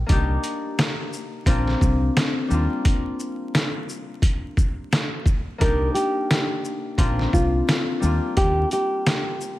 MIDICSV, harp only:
0, 0, Header, 1, 2, 480
1, 0, Start_track
1, 0, Tempo, 689655
1, 65, Time_signature, 4, 2, 24, 8
1, 6675, End_track
2, 0, Start_track
2, 0, Title_t, "Harp"
2, 0, Program_c, 0, 46
2, 0, Note_on_c, 0, 55, 71
2, 44, Note_on_c, 0, 58, 70
2, 57, Note_on_c, 0, 62, 65
2, 69, Note_on_c, 0, 63, 64
2, 81, Note_on_c, 0, 67, 83
2, 100, Note_off_c, 0, 55, 0
2, 1014, Note_off_c, 0, 58, 0
2, 1017, Note_on_c, 0, 58, 83
2, 1022, Note_on_c, 0, 60, 79
2, 1025, Note_off_c, 0, 62, 0
2, 1028, Note_on_c, 0, 62, 75
2, 1035, Note_on_c, 0, 65, 90
2, 1070, Note_off_c, 0, 63, 0
2, 1719, Note_off_c, 0, 67, 0
2, 1729, Note_on_c, 0, 55, 68
2, 1737, Note_off_c, 0, 58, 0
2, 1740, Note_on_c, 0, 58, 62
2, 1750, Note_off_c, 0, 62, 0
2, 1753, Note_on_c, 0, 62, 59
2, 1762, Note_off_c, 0, 65, 0
2, 1765, Note_on_c, 0, 65, 75
2, 3110, Note_off_c, 0, 60, 0
2, 3647, Note_off_c, 0, 65, 0
2, 3701, Note_off_c, 0, 62, 0
2, 3882, Note_off_c, 0, 58, 0
2, 3885, Note_on_c, 0, 58, 71
2, 3897, Note_on_c, 0, 62, 67
2, 3909, Note_on_c, 0, 63, 62
2, 3921, Note_on_c, 0, 67, 81
2, 3940, Note_off_c, 0, 55, 0
2, 4852, Note_off_c, 0, 58, 0
2, 4855, Note_on_c, 0, 58, 83
2, 4862, Note_on_c, 0, 60, 80
2, 4866, Note_off_c, 0, 62, 0
2, 4868, Note_on_c, 0, 62, 76
2, 4874, Note_on_c, 0, 65, 91
2, 4910, Note_off_c, 0, 63, 0
2, 5559, Note_off_c, 0, 67, 0
2, 5567, Note_on_c, 0, 55, 69
2, 5576, Note_off_c, 0, 58, 0
2, 5579, Note_on_c, 0, 58, 64
2, 5590, Note_off_c, 0, 62, 0
2, 5592, Note_on_c, 0, 62, 58
2, 5601, Note_off_c, 0, 65, 0
2, 5604, Note_on_c, 0, 65, 76
2, 6675, Note_off_c, 0, 55, 0
2, 6675, Note_off_c, 0, 58, 0
2, 6675, Note_off_c, 0, 60, 0
2, 6675, Note_off_c, 0, 62, 0
2, 6675, Note_off_c, 0, 65, 0
2, 6675, End_track
0, 0, End_of_file